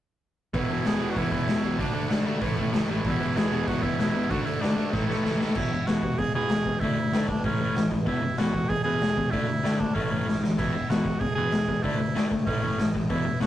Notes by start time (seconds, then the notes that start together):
0.53 E1 E2 B2 E3, kick, open hi-hat
0.57 E4
0.69 E2 B2 E3, open hi-hat
0.84 E1 E2 B2 E3 G#4, snare, open hi-hat
1.00 E1 E2 B2 E3, open hi-hat
1.10 F#4
1.16 E1 E2 B2 E3 E4, kick, open hi-hat
1.31 E1 E2 B2 E3, kick, open hi-hat
1.47 E1 E2 B2 E3, snare, open hi-hat
1.62 B1 E2 B2 E3, open hi-hat
1.78 D2 D3 A3 D4, kick, open hi-hat
1.93 D2 D3 A3 D4, open hi-hat
2.09 D2 D3 A3 D4, snare, open hi-hat
2.25 D2 D3 A3 D4, open hi-hat
2.40 A1 A2 E3 A3, kick, open hi-hat
2.56 A2 E3 A3, kick, open hi-hat
2.73 C#2 A2 E3 A3, snare, open hi-hat
2.89 A1 A2 E3 A3, open hi-hat
3.04 E1 E2 B2 E3, kick, open hi-hat
3.08 E4
3.21 E2 B2 E3, open hi-hat
3.36 E1 E2 B2 E3 G#4, snare, open hi-hat
3.52 E1 E2 B2 E3, open hi-hat
3.68 E2 B2 E3 F#4, kick, open hi-hat
3.82 E1 E2 B2 E3 E4, kick, open hi-hat
3.99 E1 E2 B2 E3, snare, open hi-hat
4.14 E2 B2 E3, open hi-hat
4.29 D2 D3 A3 D4 F#4, kick, open hi-hat
4.45 D2 D3 A3 D4 E4, open hi-hat
4.60 D2 D3 A3 D4, snare, open hi-hat
4.76 D2 D3 A3 D4, open hi-hat
4.91 A1 A2 E3 A3 E4, kick, snare
5.08 A2 E3 A3, snare
5.24 C#2 A2 E3 A3, snare
5.40 D#2 A2 E3 A3, snare
5.55 E1 E2 B2 E3 E4, kick, crash
5.71 E1 E2 B2
5.87 E1 E2 B2 E3 F#4, snare, open hi-hat
6.03 E1 E2 B2, kick
6.18 E1 E2 B2 G#4, kick, open hi-hat
6.35 E2 B2 E3 G#4
6.49 E1 E2 B2, snare, open hi-hat
6.66 E1 E2 B2, kick
6.80 D2 D3 A3 D4 E4, kick, open hi-hat
6.96 D2 D3 A3
7.12 D2 D3 A3 D4, snare, open hi-hat
7.28 B1 D3 A3 D4, kick
7.44 A1 A2 E3 A3 C#4, kick, open hi-hat
7.60 A2 E3 A3
7.75 A1 A2 E3, snare, open hi-hat
7.91 A1 A2 E3, kick
8.06 E1 E2 B2 E3 E4, kick, open hi-hat
8.22 E1 E2 B2
8.38 E1 E2 B2 E3 F#4, snare, open hi-hat
8.53 E1 E2 B2, kick
8.69 E1 E2 B2 G#4, kick, open hi-hat
8.84 E2 B2 E3 G#4
9.01 E1 E2 B2, snare, open hi-hat
9.17 E2 B2, kick
9.31 D2 D3 A3 D4 E4, kick, open hi-hat
9.47 D2 D3 A3
9.63 D2 D3 A3 D4, snare, open hi-hat
9.79 D2 D3 A3 D4, kick
9.94 A1 A2 E3 A3 C#4, kick, open hi-hat
10.11 A2 E3 A3
10.26 A1 A2 E3, snare
10.41 D2 A2 E3, snare
10.58 E1 E2 B2 E3 E4, kick, open hi-hat, crash
10.72 E1 E2 B2
10.88 E1 E2 B2 E3 F#4, snare, open hi-hat
11.05 E1 E2 B2, kick
11.20 E1 E2 B2 G#4, kick, open hi-hat
11.35 E2 B2 E3 G#4
11.51 E1 E2 B2, snare, open hi-hat
11.68 E2 B2, kick
11.83 D2 D3 A3 D4 E4, kick, open hi-hat
11.99 D2 D3 A3
12.15 D2 D3 A3 D4, snare, open hi-hat
12.31 D2 D3 A3, kick
12.46 A1 A2 E3 A3 C#4, kick, open hi-hat
12.63 A2 E3 A3
12.78 A1 A2 E3, snare, open hi-hat
12.94 A1 A2 E3, kick
13.10 E2 B2 E3 E4, kick, open hi-hat
13.25 E1 E2 B2
13.40 E1 E2 B2 E3 F#4, snare, open hi-hat